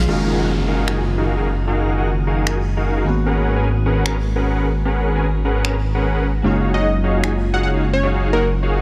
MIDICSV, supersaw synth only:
0, 0, Header, 1, 2, 480
1, 0, Start_track
1, 0, Key_signature, 6, "major"
1, 0, Tempo, 397351
1, 101, Time_signature, 4, 2, 24, 8
1, 10649, End_track
2, 0, Start_track
2, 0, Title_t, "Supersaw synth"
2, 0, Program_c, 0, 81
2, 101, Note_on_c, 0, 63, 89
2, 101, Note_on_c, 0, 66, 78
2, 101, Note_on_c, 0, 68, 80
2, 101, Note_on_c, 0, 70, 84
2, 101, Note_on_c, 0, 77, 96
2, 434, Note_off_c, 0, 63, 0
2, 434, Note_off_c, 0, 68, 0
2, 435, Note_off_c, 0, 66, 0
2, 435, Note_off_c, 0, 70, 0
2, 435, Note_off_c, 0, 77, 0
2, 464, Note_on_c, 0, 63, 96
2, 464, Note_on_c, 0, 66, 86
2, 464, Note_on_c, 0, 68, 85
2, 464, Note_on_c, 0, 70, 86
2, 464, Note_on_c, 0, 78, 108
2, 593, Note_off_c, 0, 78, 0
2, 594, Note_off_c, 0, 63, 0
2, 594, Note_off_c, 0, 66, 0
2, 594, Note_off_c, 0, 68, 0
2, 594, Note_off_c, 0, 70, 0
2, 821, Note_on_c, 0, 63, 81
2, 821, Note_on_c, 0, 66, 72
2, 821, Note_on_c, 0, 68, 77
2, 821, Note_on_c, 0, 70, 74
2, 821, Note_on_c, 0, 77, 94
2, 1033, Note_off_c, 0, 63, 0
2, 1033, Note_off_c, 0, 66, 0
2, 1033, Note_off_c, 0, 68, 0
2, 1033, Note_off_c, 0, 70, 0
2, 1033, Note_off_c, 0, 77, 0
2, 1061, Note_on_c, 0, 63, 84
2, 1061, Note_on_c, 0, 66, 77
2, 1061, Note_on_c, 0, 68, 73
2, 1061, Note_on_c, 0, 70, 74
2, 1061, Note_on_c, 0, 80, 93
2, 1196, Note_off_c, 0, 63, 0
2, 1196, Note_off_c, 0, 66, 0
2, 1196, Note_off_c, 0, 68, 0
2, 1196, Note_off_c, 0, 70, 0
2, 1196, Note_off_c, 0, 80, 0
2, 1423, Note_on_c, 0, 63, 88
2, 1423, Note_on_c, 0, 68, 79
2, 1423, Note_on_c, 0, 77, 97
2, 1424, Note_on_c, 0, 66, 82
2, 1424, Note_on_c, 0, 70, 79
2, 1634, Note_off_c, 0, 63, 0
2, 1634, Note_off_c, 0, 66, 0
2, 1634, Note_off_c, 0, 68, 0
2, 1634, Note_off_c, 0, 70, 0
2, 1634, Note_off_c, 0, 77, 0
2, 1663, Note_on_c, 0, 66, 74
2, 1664, Note_on_c, 0, 63, 79
2, 1664, Note_on_c, 0, 68, 72
2, 1664, Note_on_c, 0, 70, 77
2, 1664, Note_on_c, 0, 77, 89
2, 1793, Note_off_c, 0, 66, 0
2, 1793, Note_off_c, 0, 68, 0
2, 1794, Note_off_c, 0, 63, 0
2, 1794, Note_off_c, 0, 70, 0
2, 1794, Note_off_c, 0, 77, 0
2, 2021, Note_on_c, 0, 63, 88
2, 2021, Note_on_c, 0, 66, 77
2, 2021, Note_on_c, 0, 68, 80
2, 2021, Note_on_c, 0, 70, 81
2, 2021, Note_on_c, 0, 77, 94
2, 2354, Note_off_c, 0, 63, 0
2, 2354, Note_off_c, 0, 66, 0
2, 2354, Note_off_c, 0, 68, 0
2, 2354, Note_off_c, 0, 70, 0
2, 2354, Note_off_c, 0, 77, 0
2, 2384, Note_on_c, 0, 63, 98
2, 2384, Note_on_c, 0, 66, 93
2, 2384, Note_on_c, 0, 68, 89
2, 2384, Note_on_c, 0, 70, 89
2, 2384, Note_on_c, 0, 78, 109
2, 2513, Note_off_c, 0, 66, 0
2, 2514, Note_off_c, 0, 63, 0
2, 2514, Note_off_c, 0, 68, 0
2, 2514, Note_off_c, 0, 70, 0
2, 2514, Note_off_c, 0, 78, 0
2, 2741, Note_on_c, 0, 63, 82
2, 2741, Note_on_c, 0, 66, 75
2, 2741, Note_on_c, 0, 68, 78
2, 2741, Note_on_c, 0, 70, 77
2, 2741, Note_on_c, 0, 77, 90
2, 2953, Note_off_c, 0, 63, 0
2, 2953, Note_off_c, 0, 66, 0
2, 2953, Note_off_c, 0, 68, 0
2, 2953, Note_off_c, 0, 70, 0
2, 2953, Note_off_c, 0, 77, 0
2, 2980, Note_on_c, 0, 63, 81
2, 2980, Note_on_c, 0, 66, 75
2, 2980, Note_on_c, 0, 68, 75
2, 2980, Note_on_c, 0, 70, 74
2, 2980, Note_on_c, 0, 80, 94
2, 3116, Note_off_c, 0, 63, 0
2, 3116, Note_off_c, 0, 66, 0
2, 3116, Note_off_c, 0, 68, 0
2, 3116, Note_off_c, 0, 70, 0
2, 3116, Note_off_c, 0, 80, 0
2, 3344, Note_on_c, 0, 63, 85
2, 3344, Note_on_c, 0, 66, 82
2, 3344, Note_on_c, 0, 68, 79
2, 3344, Note_on_c, 0, 70, 84
2, 3344, Note_on_c, 0, 77, 94
2, 3554, Note_off_c, 0, 63, 0
2, 3554, Note_off_c, 0, 66, 0
2, 3554, Note_off_c, 0, 68, 0
2, 3554, Note_off_c, 0, 70, 0
2, 3554, Note_off_c, 0, 77, 0
2, 3584, Note_on_c, 0, 63, 79
2, 3584, Note_on_c, 0, 66, 72
2, 3584, Note_on_c, 0, 68, 73
2, 3584, Note_on_c, 0, 70, 75
2, 3584, Note_on_c, 0, 77, 89
2, 3687, Note_off_c, 0, 63, 0
2, 3687, Note_off_c, 0, 66, 0
2, 3687, Note_off_c, 0, 68, 0
2, 3687, Note_off_c, 0, 70, 0
2, 3687, Note_off_c, 0, 77, 0
2, 3941, Note_on_c, 0, 61, 90
2, 3941, Note_on_c, 0, 68, 81
2, 3941, Note_on_c, 0, 70, 82
2, 3941, Note_on_c, 0, 71, 78
2, 3941, Note_on_c, 0, 78, 97
2, 4275, Note_off_c, 0, 61, 0
2, 4275, Note_off_c, 0, 68, 0
2, 4275, Note_off_c, 0, 70, 0
2, 4275, Note_off_c, 0, 71, 0
2, 4275, Note_off_c, 0, 78, 0
2, 4303, Note_on_c, 0, 61, 101
2, 4303, Note_on_c, 0, 70, 89
2, 4303, Note_on_c, 0, 71, 88
2, 4304, Note_on_c, 0, 68, 87
2, 4304, Note_on_c, 0, 80, 109
2, 4433, Note_off_c, 0, 61, 0
2, 4433, Note_off_c, 0, 68, 0
2, 4433, Note_off_c, 0, 70, 0
2, 4433, Note_off_c, 0, 71, 0
2, 4433, Note_off_c, 0, 80, 0
2, 4660, Note_on_c, 0, 61, 80
2, 4660, Note_on_c, 0, 68, 81
2, 4660, Note_on_c, 0, 70, 76
2, 4660, Note_on_c, 0, 71, 75
2, 4660, Note_on_c, 0, 78, 92
2, 4872, Note_off_c, 0, 61, 0
2, 4873, Note_off_c, 0, 68, 0
2, 4873, Note_off_c, 0, 70, 0
2, 4873, Note_off_c, 0, 71, 0
2, 4873, Note_off_c, 0, 78, 0
2, 4900, Note_on_c, 0, 61, 83
2, 4900, Note_on_c, 0, 68, 78
2, 4900, Note_on_c, 0, 70, 75
2, 4900, Note_on_c, 0, 71, 79
2, 4901, Note_on_c, 0, 82, 93
2, 5036, Note_off_c, 0, 61, 0
2, 5036, Note_off_c, 0, 68, 0
2, 5036, Note_off_c, 0, 70, 0
2, 5036, Note_off_c, 0, 71, 0
2, 5036, Note_off_c, 0, 82, 0
2, 5264, Note_on_c, 0, 61, 91
2, 5264, Note_on_c, 0, 68, 82
2, 5264, Note_on_c, 0, 70, 78
2, 5264, Note_on_c, 0, 71, 85
2, 5264, Note_on_c, 0, 78, 95
2, 5474, Note_off_c, 0, 61, 0
2, 5474, Note_off_c, 0, 68, 0
2, 5474, Note_off_c, 0, 70, 0
2, 5474, Note_off_c, 0, 78, 0
2, 5475, Note_off_c, 0, 71, 0
2, 5504, Note_on_c, 0, 61, 85
2, 5504, Note_on_c, 0, 68, 74
2, 5504, Note_on_c, 0, 70, 76
2, 5504, Note_on_c, 0, 71, 74
2, 5504, Note_on_c, 0, 78, 89
2, 5634, Note_off_c, 0, 61, 0
2, 5634, Note_off_c, 0, 68, 0
2, 5634, Note_off_c, 0, 70, 0
2, 5634, Note_off_c, 0, 71, 0
2, 5634, Note_off_c, 0, 78, 0
2, 5861, Note_on_c, 0, 68, 82
2, 5861, Note_on_c, 0, 71, 82
2, 5862, Note_on_c, 0, 61, 88
2, 5862, Note_on_c, 0, 70, 81
2, 5862, Note_on_c, 0, 78, 96
2, 6195, Note_off_c, 0, 61, 0
2, 6195, Note_off_c, 0, 68, 0
2, 6195, Note_off_c, 0, 70, 0
2, 6195, Note_off_c, 0, 71, 0
2, 6195, Note_off_c, 0, 78, 0
2, 6224, Note_on_c, 0, 70, 89
2, 6224, Note_on_c, 0, 71, 85
2, 6224, Note_on_c, 0, 80, 106
2, 6225, Note_on_c, 0, 61, 96
2, 6225, Note_on_c, 0, 68, 88
2, 6354, Note_off_c, 0, 61, 0
2, 6354, Note_off_c, 0, 68, 0
2, 6354, Note_off_c, 0, 70, 0
2, 6354, Note_off_c, 0, 71, 0
2, 6354, Note_off_c, 0, 80, 0
2, 6581, Note_on_c, 0, 61, 85
2, 6581, Note_on_c, 0, 68, 78
2, 6581, Note_on_c, 0, 70, 77
2, 6581, Note_on_c, 0, 71, 78
2, 6581, Note_on_c, 0, 78, 93
2, 6793, Note_off_c, 0, 61, 0
2, 6793, Note_off_c, 0, 68, 0
2, 6793, Note_off_c, 0, 70, 0
2, 6793, Note_off_c, 0, 71, 0
2, 6793, Note_off_c, 0, 78, 0
2, 6821, Note_on_c, 0, 61, 87
2, 6821, Note_on_c, 0, 68, 75
2, 6821, Note_on_c, 0, 70, 80
2, 6821, Note_on_c, 0, 71, 75
2, 6822, Note_on_c, 0, 82, 94
2, 6956, Note_off_c, 0, 61, 0
2, 6956, Note_off_c, 0, 68, 0
2, 6956, Note_off_c, 0, 70, 0
2, 6956, Note_off_c, 0, 71, 0
2, 6956, Note_off_c, 0, 82, 0
2, 7184, Note_on_c, 0, 61, 92
2, 7184, Note_on_c, 0, 68, 81
2, 7184, Note_on_c, 0, 70, 83
2, 7184, Note_on_c, 0, 71, 80
2, 7184, Note_on_c, 0, 78, 98
2, 7395, Note_off_c, 0, 61, 0
2, 7395, Note_off_c, 0, 68, 0
2, 7395, Note_off_c, 0, 70, 0
2, 7395, Note_off_c, 0, 71, 0
2, 7395, Note_off_c, 0, 78, 0
2, 7424, Note_on_c, 0, 61, 82
2, 7424, Note_on_c, 0, 68, 78
2, 7424, Note_on_c, 0, 70, 73
2, 7424, Note_on_c, 0, 71, 75
2, 7424, Note_on_c, 0, 78, 92
2, 7554, Note_off_c, 0, 61, 0
2, 7554, Note_off_c, 0, 68, 0
2, 7554, Note_off_c, 0, 70, 0
2, 7554, Note_off_c, 0, 71, 0
2, 7554, Note_off_c, 0, 78, 0
2, 7781, Note_on_c, 0, 63, 86
2, 7781, Note_on_c, 0, 66, 83
2, 7781, Note_on_c, 0, 68, 82
2, 7781, Note_on_c, 0, 73, 81
2, 7781, Note_on_c, 0, 77, 95
2, 8114, Note_off_c, 0, 63, 0
2, 8114, Note_off_c, 0, 66, 0
2, 8114, Note_off_c, 0, 73, 0
2, 8114, Note_off_c, 0, 77, 0
2, 8115, Note_off_c, 0, 68, 0
2, 8144, Note_on_c, 0, 63, 95
2, 8144, Note_on_c, 0, 68, 86
2, 8144, Note_on_c, 0, 73, 91
2, 8145, Note_on_c, 0, 66, 87
2, 8145, Note_on_c, 0, 78, 103
2, 8274, Note_off_c, 0, 63, 0
2, 8274, Note_off_c, 0, 66, 0
2, 8274, Note_off_c, 0, 68, 0
2, 8274, Note_off_c, 0, 73, 0
2, 8274, Note_off_c, 0, 78, 0
2, 8501, Note_on_c, 0, 63, 82
2, 8501, Note_on_c, 0, 66, 75
2, 8501, Note_on_c, 0, 68, 76
2, 8501, Note_on_c, 0, 73, 81
2, 8501, Note_on_c, 0, 77, 95
2, 8713, Note_off_c, 0, 63, 0
2, 8713, Note_off_c, 0, 66, 0
2, 8713, Note_off_c, 0, 68, 0
2, 8713, Note_off_c, 0, 73, 0
2, 8713, Note_off_c, 0, 77, 0
2, 8741, Note_on_c, 0, 63, 86
2, 8741, Note_on_c, 0, 66, 75
2, 8741, Note_on_c, 0, 68, 73
2, 8741, Note_on_c, 0, 73, 75
2, 8741, Note_on_c, 0, 80, 92
2, 8876, Note_off_c, 0, 63, 0
2, 8876, Note_off_c, 0, 66, 0
2, 8876, Note_off_c, 0, 68, 0
2, 8876, Note_off_c, 0, 73, 0
2, 8876, Note_off_c, 0, 80, 0
2, 9103, Note_on_c, 0, 68, 81
2, 9104, Note_on_c, 0, 63, 86
2, 9104, Note_on_c, 0, 66, 81
2, 9104, Note_on_c, 0, 73, 78
2, 9104, Note_on_c, 0, 77, 98
2, 9314, Note_off_c, 0, 63, 0
2, 9314, Note_off_c, 0, 66, 0
2, 9314, Note_off_c, 0, 68, 0
2, 9314, Note_off_c, 0, 73, 0
2, 9314, Note_off_c, 0, 77, 0
2, 9344, Note_on_c, 0, 63, 81
2, 9344, Note_on_c, 0, 66, 76
2, 9344, Note_on_c, 0, 68, 75
2, 9344, Note_on_c, 0, 73, 74
2, 9344, Note_on_c, 0, 77, 89
2, 9474, Note_off_c, 0, 63, 0
2, 9474, Note_off_c, 0, 66, 0
2, 9474, Note_off_c, 0, 68, 0
2, 9474, Note_off_c, 0, 73, 0
2, 9474, Note_off_c, 0, 77, 0
2, 9701, Note_on_c, 0, 63, 90
2, 9701, Note_on_c, 0, 66, 80
2, 9701, Note_on_c, 0, 68, 85
2, 9701, Note_on_c, 0, 73, 82
2, 9701, Note_on_c, 0, 77, 98
2, 10035, Note_off_c, 0, 63, 0
2, 10035, Note_off_c, 0, 66, 0
2, 10035, Note_off_c, 0, 68, 0
2, 10035, Note_off_c, 0, 73, 0
2, 10035, Note_off_c, 0, 77, 0
2, 10064, Note_on_c, 0, 63, 100
2, 10064, Note_on_c, 0, 66, 89
2, 10064, Note_on_c, 0, 68, 89
2, 10064, Note_on_c, 0, 73, 91
2, 10064, Note_on_c, 0, 78, 108
2, 10194, Note_off_c, 0, 63, 0
2, 10194, Note_off_c, 0, 66, 0
2, 10194, Note_off_c, 0, 68, 0
2, 10194, Note_off_c, 0, 73, 0
2, 10194, Note_off_c, 0, 78, 0
2, 10421, Note_on_c, 0, 63, 81
2, 10421, Note_on_c, 0, 66, 76
2, 10421, Note_on_c, 0, 68, 77
2, 10421, Note_on_c, 0, 73, 76
2, 10421, Note_on_c, 0, 77, 89
2, 10633, Note_off_c, 0, 63, 0
2, 10633, Note_off_c, 0, 66, 0
2, 10633, Note_off_c, 0, 68, 0
2, 10633, Note_off_c, 0, 73, 0
2, 10633, Note_off_c, 0, 77, 0
2, 10649, End_track
0, 0, End_of_file